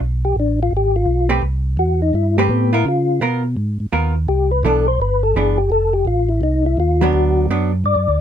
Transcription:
0.00 0.35 B1 medium
0.25 0.36 G4 medium
0.36 0.70 A1 medium
0.36 0.60 D4 medium
0.63 0.73 F4 medium
0.71 1.06 G#1 medium
0.77 0.96 G4 medium
0.96 1.28 F4 medium
1.06 1.41 B1 medium
1.29 1.41 A3 medium
1.29 1.41 C4 medium
1.29 1.41 G4 medium
1.29 1.42 B4 medium
1.42 1.77 C2 medium
1.77 2.12 E2 medium
1.77 2.01 F#4 medium
2.02 2.14 D#4 medium
2.13 2.48 G2 medium
2.13 2.37 E4 medium
2.38 2.50 G3 medium
2.38 2.71 A3 medium
2.38 2.71 C4 medium
2.38 2.71 G4 medium
2.38 2.72 B4 medium
2.49 2.84 A2 loud
2.49 2.72 B3 medium
2.73 2.84 B3 medium
2.73 2.86 E4 medium
2.73 2.84 F4 medium
2.73 2.85 A#4 medium
2.85 3.20 C#3 medium
2.85 3.20 F4 medium
3.21 3.56 B2 medium
3.21 3.42 B3 medium
3.21 3.42 F4 medium
3.21 3.42 A#4 medium
3.56 3.78 G#2 medium
3.80 3.86 G#2 soft
3.92 4.27 D#2 medium
3.92 4.13 B3 soft
3.92 4.13 F4 medium
3.92 4.13 A#4 soft
4.28 4.63 C2 medium
4.28 4.51 G4 medium
4.51 4.64 B4 loud
4.63 4.98 B1 medium
4.63 4.85 E3 medium
4.63 4.85 B3 medium
4.63 4.86 D4 medium
4.63 4.87 A4 medium
4.88 5.00 C5 medium
4.99 5.34 G1 medium
4.99 5.23 B4 medium
5.23 5.35 A4 loud
5.34 5.70 F#1 loud
5.34 5.57 E3 soft
5.34 5.57 B3 medium
5.34 5.57 D4 medium
5.34 5.58 G#4 medium
5.58 5.71 G4 medium
5.70 6.05 F1 medium
5.70 5.94 A4 loud
5.93 6.06 G4 medium
6.05 6.41 A1 medium
6.05 6.29 F4 medium
6.29 6.42 E4 medium
6.41 6.76 C2 medium
6.41 6.65 D#4 medium
6.66 6.78 E4 loud
6.77 7.12 D#2 loud
6.77 7.01 F4 medium
7.01 7.47 F#3 medium
7.01 7.48 B3 medium
7.01 7.48 D4 medium
7.01 7.46 F#4 loud
7.13 7.48 D2 medium
7.49 7.84 F#2 medium
7.49 7.71 F#3 medium
7.49 7.71 B3 medium
7.49 7.71 D4 medium
7.84 7.96 G2 medium
7.84 8.21 D5 medium
7.95 8.08 F#2 medium
8.08 8.19 D2 medium

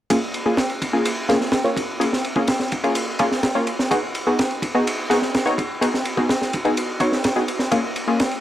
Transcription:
0.10 0.18 A#3 medium
0.10 0.18 C#4 medium
0.10 0.18 F4 medium
0.10 0.18 G#4 medium
0.10 kick loud
0.10 ride medium
0.34 ride medium
0.46 0.58 A#3 medium
0.46 0.58 C#4 medium
0.46 0.58 F4 medium
0.46 0.58 G#4 medium
0.57 snare loud
0.57 ride medium
0.70 ride soft
0.82 kick medium
0.82 ride medium
0.93 1.26 A#3 medium
0.93 1.26 C#4 medium
0.93 1.26 F4 medium
0.93 1.26 G#4 medium
1.05 ride medium
1.29 1.36 A#3 loud
1.29 1.37 C#4 medium
1.29 1.36 F4 medium
1.29 1.37 G#4 loud
1.29 snare soft
1.29 ride medium
1.41 snare soft
1.52 snare loud
1.52 ride medium
1.64 1.76 A#3 medium
1.64 1.77 C#4 medium
1.64 1.76 F4 medium
1.64 1.76 C#5 medium
1.64 ride soft
1.77 kick medium
1.77 ride medium
2.00 2.08 A#3 medium
2.00 2.08 C#4 medium
2.00 2.08 F4 medium
2.00 2.08 G#4 medium
2.00 ride medium
2.13 snare soft
2.24 ride medium
2.36 2.48 A#3 medium
2.36 2.48 C#4 medium
2.36 2.48 F4 medium
2.36 2.48 G#4 medium
2.36 kick medium
2.47 snare loud
2.47 ride medium
2.60 snare medium
2.72 kick loud
2.72 ride medium
2.84 3.17 A#3 medium
2.84 3.17 C#4 medium
2.84 3.17 F4 medium
2.84 3.17 G#4 medium
2.84 ride soft
2.95 ride medium
3.19 3.27 A#3 loud
3.19 3.27 C#4 medium
3.19 3.27 F4 medium
3.19 3.27 G#4 loud
3.19 kick medium
3.19 ride medium
3.32 snare soft
3.43 snare loud
3.43 ride medium
3.55 3.67 A#3 medium
3.55 3.67 C#4 medium
3.55 3.67 F4 medium
3.55 3.67 C#5 medium
3.67 ride medium
3.79 snare medium
3.91 3.98 B3 medium
3.91 3.98 D#4 medium
3.91 3.98 F#4 medium
3.91 3.98 G#4 medium
3.91 kick loud
3.91 ride medium
4.15 ride medium
4.27 4.39 B3 medium
4.27 4.39 D#4 medium
4.27 4.39 F#4 medium
4.27 4.39 G#4 medium
4.39 snare medium
4.39 ride medium
4.51 ride soft
4.62 kick loud
4.62 ride medium
4.75 5.07 B3 medium
4.75 5.07 D#4 medium
4.75 5.07 F#4 medium
4.75 5.07 G#4 medium
4.87 ride medium
5.10 5.17 B3 loud
5.10 5.17 D#4 medium
5.10 5.17 F#4 medium
5.10 5.17 G#4 loud
5.10 snare soft
5.10 ride medium
5.22 snare soft
5.34 snare loud
5.34 ride medium
5.46 5.58 B3 medium
5.46 5.58 D#4 medium
5.46 5.58 F#4 medium
5.46 5.58 C#5 medium
5.46 ride soft
5.58 kick medium
5.58 ride medium
5.81 5.89 B3 medium
5.81 5.89 D#4 medium
5.81 5.89 F#4 medium
5.81 5.89 G#4 medium
5.81 ride medium
5.94 snare soft
6.05 ride medium
6.17 6.29 B3 medium
6.17 6.29 D#4 medium
6.17 6.29 F#4 medium
6.17 6.29 G#4 medium
6.17 kick medium
6.29 snare loud
6.29 ride medium
6.42 snare medium
6.53 kick loud
6.53 ride medium
6.65 6.98 B3 medium
6.65 6.98 D#4 medium
6.65 6.98 F#4 medium
6.65 6.98 G#4 medium
6.65 ride soft
6.77 ride medium
7.00 7.33 B3 medium
7.00 7.33 D#4 medium
7.00 7.33 F#4 medium
7.00 7.33 C#5 loud
7.00 kick medium
7.00 ride medium
7.12 snare soft
7.24 snare loud
7.24 ride medium
7.36 7.44 B3 medium
7.36 7.44 D#4 medium
7.36 7.44 F#4 medium
7.36 7.44 G#4 medium
7.48 ride medium
7.59 snare soft
7.71 7.79 A#3 medium
7.71 7.79 C#4 medium
7.71 7.79 F4 medium
7.71 7.79 G#4 medium
7.71 kick loud
7.71 ride medium
7.96 ride medium
8.08 8.19 A#3 medium
8.08 8.20 C#4 medium
8.08 8.20 F4 medium
8.08 8.20 G#4 medium
8.20 snare loud
8.20 ride medium
8.31 ride soft

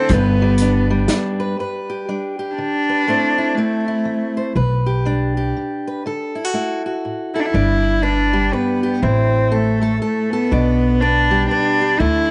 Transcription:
0.00 0.11 D3 medium
0.00 0.13 C4 medium
0.00 0.11 A4 medium
0.09 1.05 G1 medium
0.09 1.58 G2 medium
0.09 1.10 B3 medium
0.09 kick medium
0.09 closed hi-hat soft
0.14 1.39 B4 medium
0.42 0.89 G3 medium
0.58 1.08 D4 medium
0.58 closed hi-hat soft
0.90 2.07 G3 medium
1.08 1.56 D4 medium
1.08 snare medium
1.08 closed hi-hat soft
1.40 1.57 B4 medium
1.59 2.05 G2 soft
1.59 2.88 B4 soft
1.90 2.38 G4 soft
2.09 2.54 G3 soft
2.09 3.05 D4 soft
2.39 3.05 G4 soft
2.55 3.04 D3 soft
2.55 3.57 D4 medium
2.89 3.06 B4 soft
3.07 3.53 A2 medium
3.07 3.56 A3 soft
3.07 3.57 C4 soft
3.07 3.37 E4 soft
3.07 4.36 C5 soft
3.38 3.87 E4 soft
3.55 4.36 A3 medium
3.55 4.03 A3 medium
3.55 4.57 C4 soft
3.88 4.57 E4 soft
4.05 4.52 E3 soft
4.37 4.54 C5 soft
4.55 5.51 B1 medium
4.55 5.02 B2 medium
4.55 5.86 B4 soft
4.86 5.36 G4 soft
5.05 5.51 G3 soft
5.05 6.38 D4 soft
5.37 6.03 G4 soft
5.57 6.02 B2 soft
5.87 6.04 B4 soft
6.06 6.51 D3 medium
6.06 7.34 A4 soft
6.35 6.45 E4 soft
6.45 6.85 F#4 soft
6.54 7.00 A3 soft
6.54 7.51 E4 soft
6.86 7.52 F#4 soft
7.05 7.50 A2 soft
7.34 7.41 E4 medium
7.34 7.54 A4 soft
7.40 7.47 D4 medium
7.45 8.04 E4 medium
7.53 8.49 G1 medium
7.53 9.02 G2 medium
7.53 9.00 D4 soft
8.03 8.55 D4 medium
8.03 8.52 B4 medium
8.33 9.02 G3 medium
8.33 8.82 G4 soft
8.53 9.04 B3 medium
8.53 9.00 B4 soft
8.83 9.00 G4 soft
9.02 9.97 A1 medium
9.02 10.48 A2 medium
9.02 9.54 C4 medium
9.02 10.49 E4 soft
9.52 10.01 A3 medium
9.52 9.81 A4 medium
9.81 10.48 A3 soft
9.81 10.01 A4 medium
10.01 10.32 A3 medium
10.01 10.32 A4 medium
10.30 11.02 B3 medium
10.30 10.51 A4 medium
10.51 11.46 B1 medium
10.51 11.97 B2 medium
10.51 12.31 D4 soft
11.01 11.49 D4 medium
11.01 11.50 B4 medium
11.31 11.99 G3 medium
11.31 11.80 G4 soft
11.50 12.01 D4 medium
11.50 11.97 B4 medium
11.81 11.98 G4 medium
11.99 12.31 D2 medium
11.99 12.31 D3 medium
11.99 12.31 A3 soft
11.99 12.31 E4 medium

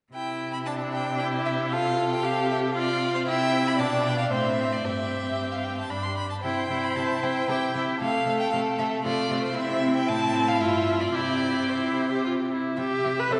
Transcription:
0.13 3.23 C3 soft
0.13 0.68 E4 soft
0.13 0.51 G5 medium
0.53 0.58 B5 medium
0.66 1.21 D4 soft
0.66 1.16 E4 soft
0.66 0.74 A5 medium
0.93 1.18 G5 medium
1.19 1.74 E4 soft
1.19 1.74 G4 soft
1.19 1.27 G5 medium
1.46 1.54 E5 medium
1.71 2.25 F4 soft
1.71 2.74 A4 medium
1.71 2.10 F5 medium
2.12 2.27 G5 medium
2.23 2.75 G4 medium
2.23 2.50 F5 medium
2.51 2.59 E5 medium
2.75 3.26 F4 medium
2.75 3.14 D5 medium
2.75 3.26 F5 medium
3.15 3.20 C5 medium
3.27 3.80 C3 medium
3.27 3.81 E4 medium
3.27 3.78 E5 medium
3.27 3.69 G5 medium
3.67 3.80 B5 medium
3.78 4.31 B2 medium
3.78 4.33 D4 medium
3.78 4.30 D5 medium
3.78 4.04 A5 medium
4.05 4.17 G5 medium
4.18 4.30 F5 medium
4.31 4.83 A2 medium
4.31 4.83 C4 soft
4.31 4.86 C5 medium
4.31 4.74 E5 medium
4.72 4.86 D5 medium
4.84 5.88 G2 soft
4.84 5.91 C4 soft
4.84 6.17 G4 soft
4.84 5.53 E5 medium
5.52 5.65 F5 soft
5.64 5.77 G5 soft
5.78 5.91 A5 soft
5.90 6.22 G2 soft
5.90 6.23 D4 soft
5.90 6.05 B5 medium
6.03 6.16 C6 medium
6.17 6.29 B5 medium
6.30 6.35 A5 soft
6.42 6.52 C3 soft
6.42 6.69 E4 soft
6.42 7.51 C5 medium
6.42 6.85 G5 medium
6.70 6.78 C3 soft
6.70 6.96 E4 soft
6.84 6.97 B5 medium
6.96 7.04 C3 soft
6.96 7.22 E4 soft
6.96 7.25 A5 medium
7.23 7.31 C3 soft
7.23 7.48 E4 soft
7.23 7.47 G5 medium
7.48 7.56 C3 soft
7.48 7.75 E4 soft
7.48 8.00 G4 soft
7.48 7.74 G5 medium
7.75 7.83 C3 soft
7.75 8.01 E4 soft
7.75 7.84 E5 medium
8.00 8.08 C3 soft
8.00 8.26 A3 soft
8.00 9.03 A4 medium
8.00 8.39 F5 medium
8.26 8.34 C3 soft
8.26 8.52 A3 soft
8.40 8.51 G5 medium
8.52 8.61 C3 soft
8.52 8.78 A3 soft
8.52 8.60 F5 medium
8.79 8.87 C3 soft
8.79 9.04 A3 soft
8.79 8.87 E5 medium
9.04 9.13 C3 medium
9.04 9.30 A3 medium
9.04 9.55 F4 medium
9.04 9.43 D5 medium
9.30 9.39 C3 medium
9.30 9.55 A3 soft
9.44 9.57 C5 medium
9.55 10.10 C3 medium
9.55 10.04 C4 medium
9.55 11.12 E4 medium
9.55 9.95 E5 medium
9.96 10.09 G5 medium
10.07 10.63 A2 medium
10.07 10.60 C4 medium
10.07 10.49 A5 medium
10.48 10.62 F5 medium
10.61 11.15 G2 medium
10.61 11.16 F4 medium
10.61 11.02 E5 medium
11.00 11.14 D5 medium
11.15 12.55 C3 soft
11.15 11.69 E4 soft
11.15 12.48 G4 soft
11.15 11.71 D5 medium
11.69 12.08 E4 soft
11.69 12.24 C5 medium
12.12 12.24 G4 soft
12.25 12.33 F4 soft
12.52 12.78 E4 soft
12.77 12.86 C3 medium
12.77 13.21 G4 medium
12.77 12.85 E5 soft
12.77 13.34 E5 soft
13.04 13.13 C3 soft
13.04 13.12 E5 soft
13.19 13.34 B4 medium
13.31 13.39 C3 soft
13.31 13.40 A4 medium
13.31 13.40 C5 soft
13.31 13.39 E5 soft

